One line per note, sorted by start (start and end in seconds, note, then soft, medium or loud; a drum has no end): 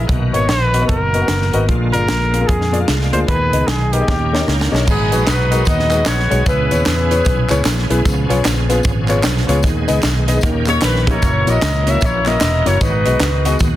0.00 3.24 A#3 medium
0.08 0.30 B1 loud
0.08 0.70 B2 medium
0.08 1.67 D#3 medium
0.08 1.67 B3 soft
0.08 1.67 F#4 medium
0.08 kick medium
0.08 closed hi-hat medium
0.33 0.47 G#1 medium
0.33 0.42 B3 medium
0.33 0.42 F#4 medium
0.33 0.42 A#4 medium
0.33 0.51 C#5 medium
0.33 0.42 D#5 medium
0.33 closed hi-hat medium
0.48 0.83 A#1 medium
0.48 0.87 B4 loud
0.48 snare medium
0.48 closed hi-hat medium
0.74 0.78 B3 medium
0.74 0.78 F#4 medium
0.74 0.78 A#4 medium
0.74 0.78 D#5 medium
0.74 closed hi-hat medium
0.81 0.90 B3 medium
0.81 0.90 F#4 medium
0.81 0.90 A#4 medium
0.81 0.90 D#5 medium
0.88 1.23 F#1 medium
0.88 1.64 A#4 medium
0.88 kick medium
0.88 closed hi-hat medium
1.14 1.18 B3 medium
1.14 1.18 F#4 medium
1.14 1.18 A#4 medium
1.14 1.18 D#5 medium
1.14 closed hi-hat medium
1.21 1.30 B3 medium
1.21 1.30 F#4 soft
1.21 1.30 A#4 soft
1.21 1.30 F#5 medium
1.28 1.50 F#1 medium
1.28 snare loud
1.28 closed hi-hat loud
1.42 snare soft
1.53 1.66 G#1 medium
1.53 1.62 B3 medium
1.53 1.62 F#4 medium
1.53 1.62 A#4 medium
1.53 1.62 D#5 medium
1.53 closed hi-hat medium
1.68 1.90 A#1 medium
1.68 2.30 A#2 medium
1.68 3.27 D3 medium
1.68 4.06 G#3 medium
1.68 3.27 F4 medium
1.68 kick medium
1.68 closed hi-hat medium
1.93 2.07 G1 medium
1.93 2.02 A#3 medium
1.93 2.02 F4 medium
1.93 2.02 G#4 medium
1.93 2.49 A#4 loud
1.93 2.02 D5 medium
1.93 closed hi-hat medium
2.08 2.43 A#1 medium
2.08 snare loud
2.08 closed hi-hat medium
2.33 2.38 A#3 medium
2.33 2.38 F4 medium
2.33 2.38 G#4 medium
2.33 2.38 F5 medium
2.33 closed hi-hat medium
2.40 2.49 A#3 medium
2.40 2.50 F4 medium
2.40 2.50 G#4 medium
2.40 2.50 A#4 medium
2.48 2.83 F2 medium
2.48 2.83 G#4 medium
2.48 kick medium
2.48 closed hi-hat medium
2.61 snare soft
2.72 2.77 A#3 medium
2.72 2.77 F4 medium
2.72 2.77 G#4 medium
2.72 2.77 D5 medium
2.72 closed hi-hat medium
2.80 2.89 A#3 medium
2.80 2.89 F4 soft
2.80 2.89 G#4 soft
2.80 2.89 F5 medium
2.88 3.10 C2 medium
2.88 snare medium
2.88 closed hi-hat loud
3.01 snare soft
3.13 3.26 D2 medium
3.13 3.21 A#3 medium
3.13 3.21 F4 medium
3.13 3.22 G#4 medium
3.13 3.20 C5 medium
3.13 3.22 D5 medium
3.13 closed hi-hat medium
3.28 3.50 D#2 medium
3.28 4.86 D#3 medium
3.28 3.89 D#3 medium
3.28 4.07 B3 medium
3.28 4.07 G#4 medium
3.28 3.67 B4 medium
3.28 kick medium
3.28 closed hi-hat medium
3.52 3.65 C#2 medium
3.52 3.61 B3 medium
3.52 3.62 D#4 medium
3.52 3.62 G#4 medium
3.52 3.62 D#5 medium
3.52 closed hi-hat medium
3.65 4.02 B1 medium
3.65 3.69 G4 medium
3.65 3.94 G#4 medium
3.65 snare loud
3.65 closed hi-hat medium
3.93 3.97 B3 medium
3.93 3.97 D#4 medium
3.93 4.48 G4 medium
3.93 3.97 G#4 medium
3.93 3.98 A#4 medium
3.93 closed hi-hat medium
4.00 4.08 B3 medium
4.00 4.08 D#4 medium
4.00 4.08 G#4 medium
4.00 4.08 D#5 medium
4.08 4.42 D#2 medium
4.08 4.69 D#3 medium
4.08 4.87 A#3 medium
4.08 4.87 C#4 medium
4.08 4.87 G4 medium
4.08 kick medium
4.08 snare soft
4.33 4.37 A#3 medium
4.33 4.37 D#4 medium
4.33 4.37 G4 medium
4.33 4.37 C#5 medium
4.33 snare medium
4.40 4.49 A#3 medium
4.40 4.49 D#4 medium
4.40 4.49 G4 medium
4.40 4.49 D#5 medium
4.48 4.69 C#2 medium
4.48 snare medium
4.61 snare medium
4.72 4.85 B1 medium
4.72 4.80 A#3 medium
4.72 4.80 D#4 medium
4.72 4.81 G4 medium
4.72 4.81 C#5 medium
4.72 snare medium
4.87 5.09 G#1 medium
4.87 5.48 G#2 medium
4.87 6.45 F#3 medium
4.87 10.39 B3 medium
4.87 5.64 B3 medium
4.87 6.45 D#4 medium
4.87 5.27 D#4 medium
4.87 6.45 G#4 medium
4.87 5.25 G#4 medium
4.87 kick medium
4.87 crash medium
4.87 tambourine medium
5.12 5.25 A#1 medium
5.12 5.20 G#3 medium
5.12 5.20 D#4 medium
5.12 5.21 F#4 medium
5.12 5.21 B4 medium
5.12 closed hi-hat medium
5.12 tambourine medium
5.27 5.61 B1 medium
5.27 6.03 D#4 medium
5.27 5.66 F#4 medium
5.27 5.66 B4 loud
5.27 snare loud
5.27 clap loud
5.27 closed hi-hat medium
5.27 tambourine medium
5.51 5.60 G#3 medium
5.51 5.60 D#4 medium
5.51 5.60 F#4 medium
5.51 5.60 A#4 medium
5.51 closed hi-hat medium
5.51 tambourine medium
5.65 6.01 D#2 loud
5.65 6.05 F#4 medium
5.65 6.43 B4 medium
5.65 6.07 D#5 loud
5.65 kick loud
5.65 closed hi-hat medium
5.65 tambourine medium
5.79 snare soft
5.91 6.00 G#3 medium
5.91 6.00 D#4 medium
5.91 6.00 F#4 medium
5.91 6.00 B4 medium
5.91 clap medium
5.91 closed hi-hat medium
5.91 tambourine medium
6.06 6.28 A#1 medium
6.06 6.44 F#4 medium
6.06 6.47 C#5 loud
6.06 snare loud
6.06 clap loud
6.06 closed hi-hat loud
6.06 tambourine loud
6.19 snare soft
6.30 6.44 B1 medium
6.30 6.39 G#3 medium
6.30 6.39 D#4 medium
6.30 6.39 F#4 medium
6.30 6.40 C#5 medium
6.30 closed hi-hat medium
6.30 tambourine soft
6.46 6.68 C#2 loud
6.46 8.04 E3 medium
6.46 9.61 C#4 medium
6.46 6.86 E4 medium
6.46 10.39 G#4 medium
6.46 6.86 G#4 medium
6.46 6.84 B4 medium
6.46 kick loud
6.46 closed hi-hat medium
6.46 tambourine medium
6.70 6.84 D#2 medium
6.70 6.79 B3 medium
6.70 6.79 E4 medium
6.70 6.79 G#4 medium
6.70 6.79 C#5 medium
6.70 closed hi-hat medium
6.70 tambourine medium
6.86 7.20 E2 medium
6.86 7.62 E4 medium
6.86 7.62 G#4 medium
6.86 7.62 B4 medium
6.86 snare loud
6.86 clap medium
6.86 closed hi-hat medium
6.86 tambourine medium
7.11 7.19 B3 medium
7.11 7.19 E4 medium
7.11 7.19 G#4 medium
7.11 7.19 C#5 medium
7.11 closed hi-hat medium
7.11 tambourine medium
7.25 7.47 B1 medium
7.25 kick loud
7.25 closed hi-hat medium
7.25 tambourine medium
7.50 7.63 C#2 medium
7.50 7.59 B3 medium
7.50 7.59 E4 medium
7.50 7.59 G#4 medium
7.50 7.59 C#5 loud
7.50 clap medium
7.50 closed hi-hat medium
7.50 tambourine medium
7.65 7.87 A#1 medium
7.65 snare loud
7.65 clap medium
7.65 closed hi-hat loud
7.65 tambourine loud
7.79 snare soft
7.90 8.03 B1 medium
7.90 7.98 B3 medium
7.90 7.99 E4 medium
7.90 7.99 G#4 medium
7.90 7.99 B4 medium
7.90 closed hi-hat medium
7.90 tambourine soft
8.05 8.26 C#2 loud
8.05 8.66 C#3 medium
8.05 9.62 F3 medium
8.05 kick loud
8.05 closed hi-hat medium
8.05 tambourine medium
8.30 8.43 B1 loud
8.30 8.38 B3 medium
8.30 8.38 F4 medium
8.30 8.38 G#4 medium
8.30 8.38 C#5 medium
8.30 closed hi-hat medium
8.30 tambourine medium
8.45 8.79 A#1 medium
8.45 snare loud
8.45 clap medium
8.45 closed hi-hat medium
8.45 tambourine loud
8.69 8.78 B3 medium
8.69 8.78 F4 medium
8.69 8.78 G#4 medium
8.69 8.78 B4 medium
8.69 closed hi-hat medium
8.69 tambourine medium
8.83 9.19 G#1 loud
8.83 kick loud
8.83 closed hi-hat medium
8.83 tambourine medium
9.08 9.17 B3 medium
9.08 9.17 F4 medium
9.08 9.17 G#4 medium
9.08 9.18 C#5 loud
9.08 clap medium
9.08 closed hi-hat medium
9.08 tambourine medium
9.24 9.45 B1 medium
9.24 snare loud
9.24 clap loud
9.24 closed hi-hat loud
9.24 tambourine loud
9.37 snare soft
9.48 9.62 C#2 loud
9.48 9.57 B3 medium
9.48 9.57 F4 medium
9.48 9.57 G#4 medium
9.48 9.57 C#5 medium
9.48 closed hi-hat medium
9.48 tambourine soft
9.63 9.85 D#2 medium
9.63 10.24 D#3 medium
9.63 10.41 D#3 medium
9.63 10.42 G#3 medium
9.63 kick medium
9.63 closed hi-hat medium
9.63 tambourine medium
9.88 10.01 C#2 medium
9.88 9.96 B3 medium
9.88 9.96 D#4 medium
9.88 9.96 G#4 medium
9.88 9.97 D#5 medium
9.88 closed hi-hat medium
9.88 tambourine medium
10.03 10.37 B1 medium
10.03 snare loud
10.03 clap medium
10.03 closed hi-hat medium
10.03 tambourine loud
10.27 10.36 B3 medium
10.27 10.36 D#4 medium
10.27 10.36 G#4 medium
10.27 10.36 D#5 medium
10.27 closed hi-hat medium
10.27 tambourine medium
10.41 10.77 D#2 loud
10.41 11.21 D#3 medium
10.41 11.04 D#3 medium
10.41 12.78 A#3 medium
10.41 11.21 C#4 medium
10.41 11.21 G4 medium
10.41 kick loud
10.41 closed hi-hat medium
10.41 tambourine medium
10.67 10.76 A#3 medium
10.67 10.76 D#4 medium
10.67 10.76 G4 medium
10.67 10.76 C#5 medium
10.67 10.82 C#5 medium
10.67 clap medium
10.67 closed hi-hat medium
10.67 tambourine medium
10.82 11.17 A#1 medium
10.82 11.06 B4 medium
10.82 snare loud
10.82 clap loud
10.82 closed hi-hat loud
10.82 tambourine loud
10.96 snare soft
11.07 11.15 A#3 medium
11.07 11.15 D#4 medium
11.07 11.84 E4 medium
11.07 11.15 G4 medium
11.07 11.47 A#4 medium
11.07 11.48 C#5 loud
11.07 11.16 D#5 medium
11.07 kick medium
11.07 closed hi-hat medium
11.07 tambourine soft
11.22 11.44 F#1 loud
11.22 12.80 E3 medium
11.22 12.80 C#4 medium
11.22 13.76 F#4 medium
11.22 kick loud
11.22 closed hi-hat medium
11.22 tambourine medium
11.47 11.60 A#1 medium
11.47 11.55 A#3 medium
11.47 11.55 E4 medium
11.47 11.56 F#4 medium
11.47 12.02 A#4 medium
11.47 11.55 C#5 medium
11.47 11.88 D#5 loud
11.47 closed hi-hat medium
11.47 tambourine medium
11.62 11.96 C#2 medium
11.62 snare loud
11.62 clap loud
11.62 closed hi-hat medium
11.62 tambourine medium
11.87 11.95 A#3 medium
11.87 11.95 E4 medium
11.87 11.95 F#4 medium
11.87 11.95 C#5 medium
11.87 12.03 E5 loud
11.87 closed hi-hat medium
11.87 tambourine medium
12.01 12.36 A#1 medium
12.01 12.78 E4 medium
12.01 12.26 A#4 medium
12.01 12.28 C#5 medium
12.01 kick loud
12.01 closed hi-hat medium
12.01 tambourine medium
12.26 12.35 A#3 medium
12.26 12.35 E4 medium
12.26 12.35 F#4 medium
12.26 12.78 A#4 medium
12.26 12.35 D#5 medium
12.26 12.67 D#5 loud
12.26 clap medium
12.26 closed hi-hat medium
12.26 tambourine medium
12.41 12.62 E1 medium
12.41 snare loud
12.41 clap loud
12.41 closed hi-hat loud
12.41 tambourine loud
12.66 12.79 F#1 medium
12.66 12.74 A#3 medium
12.66 12.74 E4 medium
12.66 12.74 F#4 medium
12.66 12.74 C#5 medium
12.66 12.82 C#5 medium
12.66 closed hi-hat medium
12.66 tambourine soft
12.81 13.02 G#1 loud
12.81 13.41 G#2 medium
12.81 13.76 D#3 medium
12.81 13.76 G#3 medium
12.81 13.76 B3 medium
12.81 13.56 D#4 medium
12.81 13.56 F#4 medium
12.81 13.57 B4 medium
12.81 kick medium
12.81 closed hi-hat medium
12.81 tambourine medium
13.05 13.19 B1 medium
13.05 13.14 B3 medium
13.05 13.14 F#4 medium
13.05 13.14 G#4 medium
13.05 13.14 D#5 medium
13.05 closed hi-hat medium
13.05 tambourine medium
13.20 13.54 C#2 medium
13.20 snare loud
13.20 clap loud
13.20 closed hi-hat medium
13.20 tambourine medium
13.45 13.54 B3 medium
13.45 13.54 F#4 medium
13.45 13.54 G#4 medium
13.45 13.54 D#5 medium
13.45 closed hi-hat medium
13.45 tambourine medium
13.59 13.76 D#2 medium
13.59 kick loud
13.59 closed hi-hat medium
13.59 tambourine medium